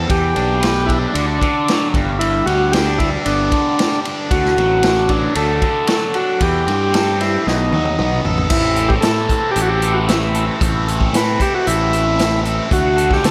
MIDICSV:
0, 0, Header, 1, 5, 480
1, 0, Start_track
1, 0, Tempo, 525394
1, 92, Time_signature, 4, 2, 24, 8
1, 12159, End_track
2, 0, Start_track
2, 0, Title_t, "Transistor combo organ"
2, 0, Program_c, 0, 18
2, 96, Note_on_c, 0, 67, 93
2, 787, Note_on_c, 0, 64, 80
2, 835, Note_off_c, 0, 67, 0
2, 900, Note_off_c, 0, 64, 0
2, 1038, Note_on_c, 0, 62, 76
2, 1149, Note_off_c, 0, 62, 0
2, 1266, Note_on_c, 0, 62, 68
2, 1724, Note_off_c, 0, 62, 0
2, 1999, Note_on_c, 0, 64, 84
2, 2247, Note_on_c, 0, 66, 85
2, 2253, Note_off_c, 0, 64, 0
2, 2482, Note_on_c, 0, 67, 80
2, 2497, Note_off_c, 0, 66, 0
2, 2724, Note_on_c, 0, 64, 84
2, 2734, Note_off_c, 0, 67, 0
2, 2834, Note_off_c, 0, 64, 0
2, 2971, Note_on_c, 0, 62, 68
2, 3656, Note_off_c, 0, 62, 0
2, 3937, Note_on_c, 0, 66, 85
2, 4656, Note_on_c, 0, 62, 74
2, 4677, Note_off_c, 0, 66, 0
2, 4878, Note_off_c, 0, 62, 0
2, 4900, Note_on_c, 0, 69, 99
2, 5621, Note_on_c, 0, 66, 76
2, 5639, Note_off_c, 0, 69, 0
2, 5865, Note_off_c, 0, 66, 0
2, 5868, Note_on_c, 0, 67, 86
2, 6588, Note_on_c, 0, 64, 73
2, 6604, Note_off_c, 0, 67, 0
2, 6821, Note_on_c, 0, 63, 67
2, 6829, Note_off_c, 0, 64, 0
2, 7502, Note_off_c, 0, 63, 0
2, 7762, Note_on_c, 0, 64, 84
2, 8118, Note_on_c, 0, 67, 89
2, 8141, Note_off_c, 0, 64, 0
2, 8176, Note_off_c, 0, 67, 0
2, 8227, Note_on_c, 0, 69, 87
2, 8687, Note_off_c, 0, 69, 0
2, 8692, Note_on_c, 0, 67, 99
2, 8781, Note_off_c, 0, 67, 0
2, 8790, Note_on_c, 0, 66, 81
2, 8844, Note_on_c, 0, 67, 79
2, 8860, Note_off_c, 0, 66, 0
2, 9076, Note_on_c, 0, 66, 73
2, 9093, Note_off_c, 0, 67, 0
2, 9134, Note_off_c, 0, 66, 0
2, 9214, Note_on_c, 0, 64, 58
2, 9549, Note_off_c, 0, 64, 0
2, 10199, Note_on_c, 0, 71, 93
2, 10430, Note_on_c, 0, 67, 90
2, 10433, Note_off_c, 0, 71, 0
2, 10545, Note_off_c, 0, 67, 0
2, 10550, Note_on_c, 0, 66, 73
2, 10660, Note_on_c, 0, 64, 83
2, 10665, Note_off_c, 0, 66, 0
2, 11339, Note_off_c, 0, 64, 0
2, 11630, Note_on_c, 0, 66, 90
2, 11990, Note_off_c, 0, 66, 0
2, 11998, Note_on_c, 0, 67, 87
2, 12104, Note_on_c, 0, 69, 92
2, 12107, Note_off_c, 0, 67, 0
2, 12159, Note_off_c, 0, 69, 0
2, 12159, End_track
3, 0, Start_track
3, 0, Title_t, "Overdriven electric guitar"
3, 0, Program_c, 1, 29
3, 85, Note_on_c, 1, 52, 53
3, 328, Note_on_c, 1, 62, 58
3, 555, Note_on_c, 1, 71, 69
3, 798, Note_off_c, 1, 62, 0
3, 802, Note_on_c, 1, 62, 57
3, 1033, Note_off_c, 1, 52, 0
3, 1037, Note_on_c, 1, 50, 61
3, 1043, Note_off_c, 1, 71, 0
3, 1284, Note_off_c, 1, 50, 0
3, 1295, Note_on_c, 1, 50, 67
3, 1550, Note_on_c, 1, 54, 60
3, 1773, Note_off_c, 1, 50, 0
3, 1774, Note_on_c, 1, 43, 63
3, 1781, Note_off_c, 1, 54, 0
3, 2002, Note_off_c, 1, 43, 0
3, 2013, Note_on_c, 1, 43, 58
3, 2262, Note_on_c, 1, 55, 58
3, 2505, Note_off_c, 1, 62, 0
3, 2505, Note_on_c, 1, 62, 64
3, 2722, Note_off_c, 1, 55, 0
3, 2733, Note_on_c, 1, 55, 58
3, 2987, Note_on_c, 1, 59, 66
3, 3213, Note_off_c, 1, 43, 0
3, 3225, Note_on_c, 1, 50, 64
3, 3453, Note_off_c, 1, 55, 0
3, 3464, Note_on_c, 1, 55, 62
3, 3699, Note_off_c, 1, 62, 0
3, 3708, Note_on_c, 1, 62, 63
3, 3934, Note_off_c, 1, 50, 0
3, 3939, Note_off_c, 1, 55, 0
3, 3940, Note_off_c, 1, 59, 0
3, 3941, Note_off_c, 1, 62, 0
3, 3945, Note_on_c, 1, 50, 57
3, 4175, Note_on_c, 1, 54, 54
3, 4421, Note_on_c, 1, 62, 62
3, 4639, Note_off_c, 1, 54, 0
3, 4649, Note_on_c, 1, 54, 63
3, 4885, Note_on_c, 1, 57, 65
3, 5121, Note_off_c, 1, 50, 0
3, 5132, Note_on_c, 1, 50, 63
3, 5351, Note_off_c, 1, 54, 0
3, 5362, Note_on_c, 1, 54, 60
3, 5607, Note_off_c, 1, 62, 0
3, 5618, Note_on_c, 1, 62, 71
3, 5845, Note_off_c, 1, 50, 0
3, 5849, Note_off_c, 1, 54, 0
3, 5849, Note_on_c, 1, 52, 59
3, 5857, Note_off_c, 1, 62, 0
3, 6087, Note_off_c, 1, 57, 0
3, 6091, Note_on_c, 1, 60, 54
3, 6337, Note_on_c, 1, 69, 58
3, 6564, Note_off_c, 1, 60, 0
3, 6575, Note_on_c, 1, 60, 61
3, 6813, Note_off_c, 1, 52, 0
3, 6816, Note_off_c, 1, 60, 0
3, 6817, Note_off_c, 1, 69, 0
3, 6824, Note_on_c, 1, 47, 61
3, 7067, Note_on_c, 1, 54, 62
3, 7303, Note_on_c, 1, 59, 60
3, 7546, Note_on_c, 1, 69, 67
3, 7773, Note_off_c, 1, 47, 0
3, 7776, Note_on_c, 1, 45, 76
3, 7777, Note_on_c, 1, 52, 78
3, 7779, Note_off_c, 1, 54, 0
3, 7779, Note_off_c, 1, 59, 0
3, 7782, Note_off_c, 1, 69, 0
3, 7783, Note_on_c, 1, 57, 81
3, 7783, Note_on_c, 1, 60, 88
3, 7792, Note_on_c, 1, 69, 89
3, 7794, Note_on_c, 1, 64, 89
3, 8022, Note_off_c, 1, 69, 0
3, 8024, Note_off_c, 1, 64, 0
3, 8026, Note_on_c, 1, 69, 54
3, 8028, Note_on_c, 1, 64, 62
3, 8036, Note_off_c, 1, 60, 0
3, 8038, Note_off_c, 1, 57, 0
3, 8039, Note_on_c, 1, 60, 63
3, 8041, Note_on_c, 1, 57, 52
3, 8253, Note_off_c, 1, 45, 0
3, 8253, Note_off_c, 1, 52, 0
3, 8255, Note_off_c, 1, 57, 0
3, 8256, Note_on_c, 1, 45, 86
3, 8257, Note_off_c, 1, 60, 0
3, 8257, Note_on_c, 1, 52, 84
3, 8259, Note_on_c, 1, 57, 85
3, 8261, Note_on_c, 1, 60, 87
3, 8264, Note_off_c, 1, 64, 0
3, 8267, Note_off_c, 1, 69, 0
3, 8268, Note_on_c, 1, 64, 93
3, 8270, Note_on_c, 1, 69, 92
3, 8503, Note_off_c, 1, 69, 0
3, 8507, Note_on_c, 1, 69, 65
3, 8510, Note_off_c, 1, 64, 0
3, 8513, Note_off_c, 1, 60, 0
3, 8513, Note_on_c, 1, 64, 66
3, 8516, Note_on_c, 1, 60, 64
3, 8519, Note_off_c, 1, 57, 0
3, 8523, Note_on_c, 1, 57, 54
3, 8736, Note_off_c, 1, 57, 0
3, 8740, Note_on_c, 1, 57, 68
3, 8741, Note_off_c, 1, 60, 0
3, 8744, Note_off_c, 1, 64, 0
3, 8752, Note_on_c, 1, 60, 66
3, 8755, Note_on_c, 1, 64, 78
3, 8757, Note_off_c, 1, 69, 0
3, 8761, Note_on_c, 1, 69, 76
3, 8983, Note_off_c, 1, 64, 0
3, 8990, Note_off_c, 1, 60, 0
3, 8993, Note_off_c, 1, 69, 0
3, 8994, Note_on_c, 1, 64, 85
3, 8996, Note_on_c, 1, 69, 77
3, 9001, Note_on_c, 1, 60, 77
3, 9005, Note_off_c, 1, 52, 0
3, 9005, Note_off_c, 1, 57, 0
3, 9009, Note_off_c, 1, 45, 0
3, 9009, Note_on_c, 1, 52, 76
3, 9009, Note_on_c, 1, 57, 74
3, 9013, Note_on_c, 1, 45, 70
3, 9222, Note_off_c, 1, 57, 0
3, 9223, Note_off_c, 1, 60, 0
3, 9224, Note_off_c, 1, 64, 0
3, 9226, Note_on_c, 1, 57, 65
3, 9234, Note_on_c, 1, 60, 66
3, 9235, Note_on_c, 1, 64, 78
3, 9244, Note_off_c, 1, 69, 0
3, 9248, Note_on_c, 1, 69, 72
3, 9454, Note_off_c, 1, 69, 0
3, 9456, Note_off_c, 1, 64, 0
3, 9457, Note_on_c, 1, 69, 72
3, 9459, Note_off_c, 1, 60, 0
3, 9467, Note_on_c, 1, 64, 65
3, 9470, Note_on_c, 1, 60, 54
3, 9471, Note_off_c, 1, 57, 0
3, 9472, Note_off_c, 1, 52, 0
3, 9474, Note_off_c, 1, 45, 0
3, 9474, Note_on_c, 1, 57, 61
3, 9695, Note_on_c, 1, 45, 81
3, 9696, Note_off_c, 1, 60, 0
3, 9697, Note_on_c, 1, 52, 79
3, 9699, Note_off_c, 1, 57, 0
3, 9699, Note_off_c, 1, 64, 0
3, 9703, Note_on_c, 1, 57, 82
3, 9707, Note_on_c, 1, 60, 88
3, 9709, Note_off_c, 1, 69, 0
3, 9710, Note_on_c, 1, 64, 77
3, 9713, Note_on_c, 1, 69, 93
3, 9931, Note_off_c, 1, 69, 0
3, 9932, Note_off_c, 1, 60, 0
3, 9934, Note_off_c, 1, 64, 0
3, 9934, Note_on_c, 1, 69, 62
3, 9943, Note_on_c, 1, 60, 57
3, 9945, Note_on_c, 1, 64, 61
3, 9948, Note_off_c, 1, 57, 0
3, 9951, Note_on_c, 1, 57, 53
3, 10168, Note_off_c, 1, 45, 0
3, 10172, Note_off_c, 1, 52, 0
3, 10179, Note_on_c, 1, 45, 83
3, 10182, Note_off_c, 1, 60, 0
3, 10183, Note_on_c, 1, 52, 87
3, 10188, Note_off_c, 1, 64, 0
3, 10189, Note_off_c, 1, 57, 0
3, 10192, Note_on_c, 1, 57, 83
3, 10193, Note_on_c, 1, 60, 96
3, 10197, Note_off_c, 1, 69, 0
3, 10199, Note_on_c, 1, 64, 89
3, 10200, Note_on_c, 1, 69, 98
3, 10418, Note_off_c, 1, 69, 0
3, 10420, Note_off_c, 1, 64, 0
3, 10422, Note_on_c, 1, 69, 71
3, 10423, Note_off_c, 1, 60, 0
3, 10431, Note_on_c, 1, 64, 66
3, 10434, Note_on_c, 1, 60, 58
3, 10437, Note_off_c, 1, 57, 0
3, 10441, Note_on_c, 1, 57, 59
3, 10656, Note_off_c, 1, 45, 0
3, 10658, Note_off_c, 1, 52, 0
3, 10659, Note_off_c, 1, 60, 0
3, 10663, Note_off_c, 1, 57, 0
3, 10666, Note_off_c, 1, 64, 0
3, 10667, Note_on_c, 1, 57, 64
3, 10670, Note_on_c, 1, 60, 76
3, 10677, Note_on_c, 1, 64, 77
3, 10686, Note_off_c, 1, 69, 0
3, 10689, Note_on_c, 1, 69, 73
3, 10894, Note_off_c, 1, 64, 0
3, 10900, Note_off_c, 1, 69, 0
3, 10901, Note_off_c, 1, 60, 0
3, 10903, Note_on_c, 1, 69, 86
3, 10905, Note_on_c, 1, 64, 84
3, 10911, Note_off_c, 1, 57, 0
3, 10912, Note_on_c, 1, 60, 75
3, 10915, Note_on_c, 1, 57, 85
3, 10918, Note_on_c, 1, 52, 76
3, 10919, Note_on_c, 1, 45, 72
3, 11128, Note_off_c, 1, 57, 0
3, 11132, Note_off_c, 1, 60, 0
3, 11132, Note_on_c, 1, 57, 63
3, 11141, Note_off_c, 1, 64, 0
3, 11143, Note_on_c, 1, 60, 72
3, 11152, Note_on_c, 1, 64, 78
3, 11153, Note_off_c, 1, 69, 0
3, 11156, Note_on_c, 1, 69, 67
3, 11373, Note_off_c, 1, 64, 0
3, 11374, Note_off_c, 1, 60, 0
3, 11374, Note_off_c, 1, 69, 0
3, 11378, Note_on_c, 1, 69, 80
3, 11384, Note_off_c, 1, 52, 0
3, 11384, Note_on_c, 1, 64, 68
3, 11385, Note_off_c, 1, 45, 0
3, 11385, Note_on_c, 1, 60, 62
3, 11390, Note_off_c, 1, 57, 0
3, 11394, Note_on_c, 1, 57, 59
3, 11603, Note_off_c, 1, 64, 0
3, 11603, Note_on_c, 1, 50, 76
3, 11604, Note_off_c, 1, 60, 0
3, 11606, Note_off_c, 1, 57, 0
3, 11610, Note_on_c, 1, 57, 83
3, 11618, Note_on_c, 1, 62, 81
3, 11622, Note_off_c, 1, 69, 0
3, 11624, Note_on_c, 1, 66, 94
3, 11626, Note_on_c, 1, 69, 90
3, 11839, Note_off_c, 1, 69, 0
3, 11843, Note_on_c, 1, 69, 69
3, 11851, Note_off_c, 1, 66, 0
3, 11855, Note_on_c, 1, 66, 58
3, 11857, Note_off_c, 1, 62, 0
3, 11860, Note_on_c, 1, 62, 54
3, 12086, Note_off_c, 1, 50, 0
3, 12088, Note_off_c, 1, 57, 0
3, 12089, Note_on_c, 1, 50, 87
3, 12092, Note_on_c, 1, 57, 86
3, 12094, Note_off_c, 1, 62, 0
3, 12094, Note_off_c, 1, 66, 0
3, 12097, Note_on_c, 1, 62, 83
3, 12098, Note_on_c, 1, 66, 93
3, 12101, Note_off_c, 1, 69, 0
3, 12105, Note_on_c, 1, 69, 87
3, 12159, Note_off_c, 1, 50, 0
3, 12159, Note_off_c, 1, 57, 0
3, 12159, Note_off_c, 1, 62, 0
3, 12159, Note_off_c, 1, 66, 0
3, 12159, Note_off_c, 1, 69, 0
3, 12159, End_track
4, 0, Start_track
4, 0, Title_t, "Fingered electric bass"
4, 0, Program_c, 2, 33
4, 92, Note_on_c, 2, 40, 81
4, 302, Note_off_c, 2, 40, 0
4, 333, Note_on_c, 2, 35, 77
4, 963, Note_off_c, 2, 35, 0
4, 1048, Note_on_c, 2, 38, 80
4, 1260, Note_off_c, 2, 38, 0
4, 1776, Note_on_c, 2, 31, 80
4, 2194, Note_off_c, 2, 31, 0
4, 2251, Note_on_c, 2, 38, 72
4, 2882, Note_off_c, 2, 38, 0
4, 2978, Note_on_c, 2, 31, 82
4, 3186, Note_off_c, 2, 31, 0
4, 3937, Note_on_c, 2, 38, 73
4, 4145, Note_off_c, 2, 38, 0
4, 4175, Note_on_c, 2, 33, 74
4, 4805, Note_off_c, 2, 33, 0
4, 4893, Note_on_c, 2, 38, 84
4, 5104, Note_off_c, 2, 38, 0
4, 5858, Note_on_c, 2, 40, 79
4, 6067, Note_off_c, 2, 40, 0
4, 6092, Note_on_c, 2, 43, 78
4, 6725, Note_off_c, 2, 43, 0
4, 6822, Note_on_c, 2, 35, 81
4, 7030, Note_off_c, 2, 35, 0
4, 7050, Note_on_c, 2, 39, 70
4, 7269, Note_off_c, 2, 39, 0
4, 7296, Note_on_c, 2, 35, 65
4, 7513, Note_off_c, 2, 35, 0
4, 7537, Note_on_c, 2, 33, 68
4, 7753, Note_off_c, 2, 33, 0
4, 7773, Note_on_c, 2, 33, 85
4, 8195, Note_off_c, 2, 33, 0
4, 8258, Note_on_c, 2, 45, 76
4, 8468, Note_off_c, 2, 45, 0
4, 8734, Note_on_c, 2, 33, 83
4, 9575, Note_off_c, 2, 33, 0
4, 9698, Note_on_c, 2, 33, 94
4, 10116, Note_off_c, 2, 33, 0
4, 10171, Note_on_c, 2, 45, 77
4, 10382, Note_off_c, 2, 45, 0
4, 10662, Note_on_c, 2, 33, 92
4, 11497, Note_off_c, 2, 33, 0
4, 11621, Note_on_c, 2, 38, 92
4, 12035, Note_off_c, 2, 38, 0
4, 12097, Note_on_c, 2, 50, 84
4, 12159, Note_off_c, 2, 50, 0
4, 12159, End_track
5, 0, Start_track
5, 0, Title_t, "Drums"
5, 89, Note_on_c, 9, 36, 95
5, 89, Note_on_c, 9, 51, 66
5, 180, Note_off_c, 9, 36, 0
5, 180, Note_off_c, 9, 51, 0
5, 328, Note_on_c, 9, 51, 50
5, 419, Note_off_c, 9, 51, 0
5, 572, Note_on_c, 9, 51, 79
5, 583, Note_on_c, 9, 38, 100
5, 663, Note_off_c, 9, 51, 0
5, 674, Note_off_c, 9, 38, 0
5, 812, Note_on_c, 9, 36, 59
5, 819, Note_on_c, 9, 51, 51
5, 904, Note_off_c, 9, 36, 0
5, 910, Note_off_c, 9, 51, 0
5, 1053, Note_on_c, 9, 51, 74
5, 1144, Note_off_c, 9, 51, 0
5, 1293, Note_on_c, 9, 36, 69
5, 1300, Note_on_c, 9, 51, 53
5, 1384, Note_off_c, 9, 36, 0
5, 1391, Note_off_c, 9, 51, 0
5, 1537, Note_on_c, 9, 51, 69
5, 1548, Note_on_c, 9, 38, 88
5, 1628, Note_off_c, 9, 51, 0
5, 1639, Note_off_c, 9, 38, 0
5, 1773, Note_on_c, 9, 36, 84
5, 1776, Note_on_c, 9, 51, 51
5, 1864, Note_off_c, 9, 36, 0
5, 1868, Note_off_c, 9, 51, 0
5, 2019, Note_on_c, 9, 51, 74
5, 2111, Note_off_c, 9, 51, 0
5, 2258, Note_on_c, 9, 51, 51
5, 2350, Note_off_c, 9, 51, 0
5, 2495, Note_on_c, 9, 51, 81
5, 2506, Note_on_c, 9, 38, 101
5, 2586, Note_off_c, 9, 51, 0
5, 2597, Note_off_c, 9, 38, 0
5, 2735, Note_on_c, 9, 36, 63
5, 2740, Note_on_c, 9, 51, 52
5, 2826, Note_off_c, 9, 36, 0
5, 2831, Note_off_c, 9, 51, 0
5, 2974, Note_on_c, 9, 51, 73
5, 3066, Note_off_c, 9, 51, 0
5, 3214, Note_on_c, 9, 36, 68
5, 3215, Note_on_c, 9, 51, 50
5, 3305, Note_off_c, 9, 36, 0
5, 3306, Note_off_c, 9, 51, 0
5, 3461, Note_on_c, 9, 51, 67
5, 3472, Note_on_c, 9, 38, 91
5, 3553, Note_off_c, 9, 51, 0
5, 3564, Note_off_c, 9, 38, 0
5, 3702, Note_on_c, 9, 51, 51
5, 3794, Note_off_c, 9, 51, 0
5, 3937, Note_on_c, 9, 36, 90
5, 3938, Note_on_c, 9, 51, 65
5, 4028, Note_off_c, 9, 36, 0
5, 4029, Note_off_c, 9, 51, 0
5, 4069, Note_on_c, 9, 38, 31
5, 4160, Note_off_c, 9, 38, 0
5, 4184, Note_on_c, 9, 51, 48
5, 4275, Note_off_c, 9, 51, 0
5, 4410, Note_on_c, 9, 51, 76
5, 4421, Note_on_c, 9, 38, 108
5, 4502, Note_off_c, 9, 51, 0
5, 4513, Note_off_c, 9, 38, 0
5, 4648, Note_on_c, 9, 51, 52
5, 4652, Note_on_c, 9, 36, 60
5, 4740, Note_off_c, 9, 51, 0
5, 4744, Note_off_c, 9, 36, 0
5, 4890, Note_on_c, 9, 51, 76
5, 4982, Note_off_c, 9, 51, 0
5, 5133, Note_on_c, 9, 36, 73
5, 5133, Note_on_c, 9, 51, 49
5, 5224, Note_off_c, 9, 51, 0
5, 5225, Note_off_c, 9, 36, 0
5, 5365, Note_on_c, 9, 51, 74
5, 5376, Note_on_c, 9, 38, 98
5, 5457, Note_off_c, 9, 51, 0
5, 5468, Note_off_c, 9, 38, 0
5, 5609, Note_on_c, 9, 51, 51
5, 5700, Note_off_c, 9, 51, 0
5, 5852, Note_on_c, 9, 51, 74
5, 5854, Note_on_c, 9, 36, 93
5, 5943, Note_off_c, 9, 51, 0
5, 5945, Note_off_c, 9, 36, 0
5, 6101, Note_on_c, 9, 51, 55
5, 6192, Note_off_c, 9, 51, 0
5, 6339, Note_on_c, 9, 51, 85
5, 6350, Note_on_c, 9, 38, 98
5, 6430, Note_off_c, 9, 51, 0
5, 6441, Note_off_c, 9, 38, 0
5, 6583, Note_on_c, 9, 51, 54
5, 6594, Note_on_c, 9, 38, 28
5, 6674, Note_off_c, 9, 51, 0
5, 6685, Note_off_c, 9, 38, 0
5, 6828, Note_on_c, 9, 38, 53
5, 6920, Note_off_c, 9, 38, 0
5, 7058, Note_on_c, 9, 48, 52
5, 7149, Note_off_c, 9, 48, 0
5, 7174, Note_on_c, 9, 48, 55
5, 7265, Note_off_c, 9, 48, 0
5, 7298, Note_on_c, 9, 47, 62
5, 7389, Note_off_c, 9, 47, 0
5, 7536, Note_on_c, 9, 43, 68
5, 7627, Note_off_c, 9, 43, 0
5, 7652, Note_on_c, 9, 43, 67
5, 7744, Note_off_c, 9, 43, 0
5, 7765, Note_on_c, 9, 49, 93
5, 7770, Note_on_c, 9, 36, 93
5, 7856, Note_off_c, 9, 49, 0
5, 7862, Note_off_c, 9, 36, 0
5, 8004, Note_on_c, 9, 42, 53
5, 8096, Note_off_c, 9, 42, 0
5, 8130, Note_on_c, 9, 36, 69
5, 8221, Note_off_c, 9, 36, 0
5, 8241, Note_on_c, 9, 42, 83
5, 8252, Note_on_c, 9, 38, 114
5, 8333, Note_off_c, 9, 42, 0
5, 8344, Note_off_c, 9, 38, 0
5, 8491, Note_on_c, 9, 36, 74
5, 8493, Note_on_c, 9, 42, 54
5, 8583, Note_off_c, 9, 36, 0
5, 8584, Note_off_c, 9, 42, 0
5, 8731, Note_on_c, 9, 42, 86
5, 8822, Note_off_c, 9, 42, 0
5, 8971, Note_on_c, 9, 42, 65
5, 9062, Note_off_c, 9, 42, 0
5, 9213, Note_on_c, 9, 42, 82
5, 9224, Note_on_c, 9, 38, 97
5, 9304, Note_off_c, 9, 42, 0
5, 9315, Note_off_c, 9, 38, 0
5, 9451, Note_on_c, 9, 42, 63
5, 9542, Note_off_c, 9, 42, 0
5, 9694, Note_on_c, 9, 36, 102
5, 9696, Note_on_c, 9, 42, 88
5, 9786, Note_off_c, 9, 36, 0
5, 9787, Note_off_c, 9, 42, 0
5, 9942, Note_on_c, 9, 42, 57
5, 10034, Note_off_c, 9, 42, 0
5, 10055, Note_on_c, 9, 36, 71
5, 10146, Note_off_c, 9, 36, 0
5, 10178, Note_on_c, 9, 42, 101
5, 10189, Note_on_c, 9, 38, 109
5, 10270, Note_off_c, 9, 42, 0
5, 10280, Note_off_c, 9, 38, 0
5, 10415, Note_on_c, 9, 36, 75
5, 10419, Note_on_c, 9, 42, 63
5, 10507, Note_off_c, 9, 36, 0
5, 10510, Note_off_c, 9, 42, 0
5, 10660, Note_on_c, 9, 42, 89
5, 10752, Note_off_c, 9, 42, 0
5, 10899, Note_on_c, 9, 42, 61
5, 10990, Note_off_c, 9, 42, 0
5, 11138, Note_on_c, 9, 42, 81
5, 11149, Note_on_c, 9, 38, 94
5, 11230, Note_off_c, 9, 42, 0
5, 11240, Note_off_c, 9, 38, 0
5, 11377, Note_on_c, 9, 42, 56
5, 11468, Note_off_c, 9, 42, 0
5, 11615, Note_on_c, 9, 36, 105
5, 11621, Note_on_c, 9, 42, 80
5, 11706, Note_off_c, 9, 36, 0
5, 11713, Note_off_c, 9, 42, 0
5, 11857, Note_on_c, 9, 42, 60
5, 11949, Note_off_c, 9, 42, 0
5, 11974, Note_on_c, 9, 36, 80
5, 11988, Note_on_c, 9, 38, 35
5, 12066, Note_off_c, 9, 36, 0
5, 12080, Note_off_c, 9, 38, 0
5, 12097, Note_on_c, 9, 42, 93
5, 12108, Note_on_c, 9, 38, 113
5, 12159, Note_off_c, 9, 38, 0
5, 12159, Note_off_c, 9, 42, 0
5, 12159, End_track
0, 0, End_of_file